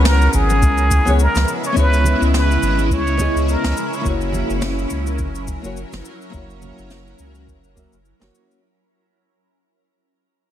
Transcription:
Already playing: sub bass C#2, ambient pad C#3 G#3 B3 E4, nylon-string guitar B3 C#4 E4 G#4 C#5
0.05 muted trumpet A#4, snare, cabasa
0.21 cabasa
0.33 sub bass G#1, muted trumpet G#4, kick, cabasa
0.50 muted conga, cabasa
0.62 sub bass C#2, kick, cabasa
0.78 cabasa
0.91 kick, cabasa
1.05 sub bass C#2, nylon-string guitar B3 C#4 E4 G#4 C#5, cabasa
1.19 muted trumpet A#4, cabasa
1.35 sub bass C#2, snare, high conga, cabasa
1.48 cabasa
1.64 muted trumpet C#5, cabasa
1.72 nylon-string guitar B3 C#4 E4, ambient pad C#4, kick
1.76 sub bass C#2, nylon-string guitar G#4 C#5, muted trumpet B4, cabasa
1.94 cabasa
2.04 muted conga, high conga, low conga, cabasa
2.21 sub bass C#2, cabasa
2.34 muted trumpet B4, snare, cabasa
2.51 cabasa
2.62 sub bass G#1, cabasa
2.77 muted conga, cabasa
2.90 sub bass C#2, muted trumpet C#5, kick, cabasa
3.07 cabasa
3.18 nylon-string guitar B3 C#4 E4 G#4 D#5, kick, cabasa
3.36 sub bass C#2, cabasa
3.49 muted trumpet A#4, cabasa
3.64 sub bass C#2, snare, high conga, cabasa
3.76 ambient pad F#3 A#4, cabasa
3.93 muted trumpet C#5, cabasa
4.01 sub bass F#1, nylon-string guitar A#3 C#4 E4, kick
4.05 nylon-string guitar F#4 C#5, cabasa
4.21 cabasa
4.33 muted conga, high conga, low conga, cabasa
4.50 sub bass F#1, cabasa
4.62 snare, cabasa
4.79 cabasa
4.90 sub bass C#2, kick, cabasa
5.07 muted conga, cabasa
5.18 sub bass F#1, kick, cabasa
5.35 cabasa
5.47 kick, cabasa
5.62 sub bass F#1, nylon-string guitar A#3 C#4 E4 F#4, cabasa
5.66 nylon-string guitar C#5
5.77 cabasa
5.92 sub bass F#1, snare, high conga, cabasa
6.05 cabasa
6.22 cabasa
6.30 sub bass F#1, nylon-string guitar A#3 C#4 E4, kick, cabasa
6.36 nylon-string guitar F#4 C#5
6.50 cabasa
6.62 muted conga, high conga, low conga, cabasa
6.78 sub bass F#1, cabasa
6.90 snare, cabasa
7.07 cabasa
7.19 sub bass C#2, cabasa
7.34 muted conga, cabasa
7.48 sub bass F#1, kick, cabasa
7.64 cabasa
7.75 nylon-string guitar A#3 C#4 F#4 E5, kick, cabasa
7.93 sub bass F#1, cabasa
8.05 cabasa
8.20 sub bass F#1, nylon-string guitar A#3 C#4 E4 F#4 C#5, snare, high conga, cabasa
8.35 cabasa
8.51 cabasa

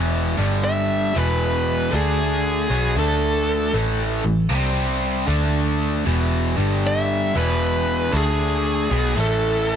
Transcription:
Already playing: picked electric bass E1, overdriven electric guitar E2 B2 E3
0.37 picked electric bass G1, overdriven electric guitar G2 D3 G3
0.65 lead electric guitar E5
1.14 picked electric bass E1, overdriven electric guitar E2 B2 E3, lead electric guitar B4
1.91 picked electric bass D2, overdriven electric guitar D3 A3 D4
1.95 lead electric guitar G#4
2.70 picked electric bass B1, overdriven electric guitar B2 F#3 B3
2.96 picked electric bass D2, overdriven electric guitar D3 A3 D4, lead electric guitar A4
3.74 picked electric bass A1, overdriven electric guitar A2 E3 A3
4.24 picked electric bass A1, overdriven electric guitar A2 E3
4.49 picked electric bass C2, overdriven electric guitar C3 G3 C4
5.27 picked electric bass D2, overdriven electric guitar D3 A3 D4
6.06 picked electric bass E1, overdriven electric guitar E2 B2 E3
6.57 picked electric bass G1, overdriven electric guitar G2 D3 G3
6.87 lead electric guitar E5
7.35 picked electric bass E1, overdriven electric guitar E2 B2 E3, lead electric guitar B4
8.11 picked electric bass D2, overdriven electric guitar D3 A3 D4
8.17 lead electric guitar G#4
8.90 picked electric bass B1, overdriven electric guitar B2 F#3 B3
9.16 picked electric bass A1, overdriven electric guitar A2 E3 A3
9.20 lead electric guitar A4

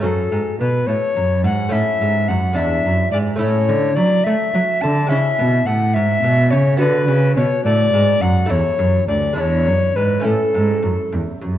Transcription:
0.00 cello F#2, lute F#2 A3 C#4 F#4, recorder A4
0.31 cello G#2, lute G#2
0.59 cello B2, lute B2, recorder B4
0.86 cello A2, lute A2, recorder C#5
1.15 cello F#2, lute F#2
1.43 cello G#2, lute G#2, recorder F#5
1.69 cello A2, lute A3 C#4 E4, recorder E5
1.73 lute A2
2.01 cello G#2, lute G#2
2.28 cello F#2, lute F#2, recorder F#5
2.53 cello E2, lute G#3 D4 E4, recorder E5
2.58 lute E2
2.84 cello F#2, lute F#2
3.12 cello G#2, lute G#2, recorder D5
3.36 lute A3 C#4 E4
3.40 lute A2, cello A2, recorder C#5
3.69 cello D3, lute D3
3.96 lute F#3, cello F#3, recorder D5
4.24 cello A3, lute A3, recorder E5
4.54 cello F#3, lute F#3
4.81 cello D3, lute D3, recorder A5
5.07 cello C#3, lute G#3 C#4 E4, recorder E5
5.12 lute C#3
5.39 lute B2, cello B2
5.66 lute A2, cello A2, recorder F#5
5.94 cello G#2, lute G#2, recorder E5
6.23 cello B2, lute B2
6.51 lute C#3, cello C#3, recorder C#5
6.77 lute D3 B3 F#4, cello D3, recorder B4
7.08 lute C#3, cello C#3
7.36 cello B2, lute B2, recorder C#5
7.64 cello A2, lute A2, recorder D5
7.94 cello G#2, lute G#2
8.21 cello F#2, lute F#2, recorder F#5
8.46 lute E2 A3 E4
8.50 cello E2, recorder C#5
8.79 lute F#2, cello F#2
9.08 lute D2, cello D2, recorder D5
9.33 lute G#3 D4 E4, recorder D5
9.38 lute E2, cello E2, recorder C#5
9.66 lute F#2, cello F#2
9.96 lute G#2, cello G#2, recorder B4
10.20 lute A3 C#4 E4
10.25 lute A2, cello A2, recorder A4
10.54 lute G#2, cello G#2
10.83 lute F#2, cello F#2
11.13 lute E2, cello E2
11.41 lute F#2, cello F#2

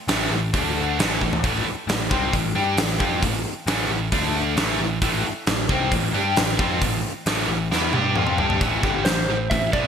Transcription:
0.08 picked electric bass A1, overdriven electric guitar A2 E3 A3, snare, open hi-hat
0.30 picked electric bass A1, overdriven electric guitar A2 E3
0.53 picked electric bass D2, overdriven electric guitar D3 A3 D4, kick, open hi-hat
0.99 picked electric bass A1, overdriven electric guitar A2 E3 A3, snare, open hi-hat
1.21 picked electric bass A1, overdriven electric guitar A2 E3, kick
1.33 floor tom
1.43 picked electric bass A1, overdriven electric guitar A2 E3 A3, kick, open hi-hat
1.65 muted picked electric bass stroke, muted overdriven electric guitar stroke, muted distorted electric guitar stroke
1.87 picked electric bass A1, overdriven electric guitar A2 E3, snare, open hi-hat
2.10 picked electric bass C2, overdriven electric guitar C3 G3 C4, kick
2.33 picked electric bass A1, overdriven electric guitar A2 E3, kick, open hi-hat
2.55 picked electric bass G2, overdriven electric guitar G3 D4 G4
2.77 picked electric bass A1, overdriven electric guitar A2 E3, snare, open hi-hat
2.99 picked electric bass F2, overdriven electric guitar F3 C4 F4, kick
3.22 picked electric bass A1, overdriven electric guitar A2 E3, kick, open hi-hat
3.67 picked electric bass A1, overdriven electric guitar A2 E3 A3, snare, open hi-hat
3.89 picked electric bass A1, overdriven electric guitar A2 E3
4.12 picked electric bass D2, overdriven electric guitar D3 A3 D4, kick, open hi-hat
4.56 picked electric bass A1, overdriven electric guitar A2 E3 A3, snare, open hi-hat
4.80 picked electric bass A1, overdriven electric guitar A2 E3
5.02 picked electric bass A1, overdriven electric guitar A2 E3 A3, kick, open hi-hat
5.25 muted picked electric bass stroke, muted overdriven electric guitar stroke, muted distorted electric guitar stroke
5.46 picked electric bass A1, overdriven electric guitar A2 E3, snare, open hi-hat
5.69 picked electric bass C2, overdriven electric guitar C3 G3 C4, kick
5.92 picked electric bass A1, overdriven electric guitar A2 E3, kick, open hi-hat
6.13 picked electric bass G2, overdriven electric guitar G3 D4 G4
6.36 picked electric bass A1, overdriven electric guitar A2 E3, snare, open hi-hat
6.59 picked electric bass F2, overdriven electric guitar F3 C4 F4, kick
6.81 picked electric bass A1, overdriven electric guitar A2 E3, kick, open hi-hat
7.26 picked electric bass A1, overdriven electric guitar A2 E3 A3, snare, open hi-hat
7.49 picked electric bass A1, overdriven electric guitar A2 E3
7.71 picked electric bass E2, overdriven electric guitar E3 B3 E4, snare
7.93 picked electric bass G2, overdriven electric guitar G3 D4 G4, high tom
8.15 picked electric bass F2, overdriven electric guitar F3 C4 F4, mid tom
8.27 mid tom
8.38 picked electric bass G2, overdriven electric guitar G3 D4 G4, floor tom
8.50 floor tom
8.61 picked electric bass A1, overdriven electric guitar A2 E3 A3, kick, open hi-hat
8.83 picked electric bass G1, overdriven electric guitar G2 D3 G3, kick
9.05 picked electric bass A1, overdriven electric guitar A2 E3, lead electric guitar C5, snare, open hi-hat
9.28 picked electric bass A1, overdriven electric guitar A2 E3
9.50 picked electric bass A1, overdriven electric guitar A2 E3, lead electric guitar E5, kick, open hi-hat
9.73 picked electric bass B1, overdriven electric guitar B2 F#3 B3, lead electric guitar D5, kick

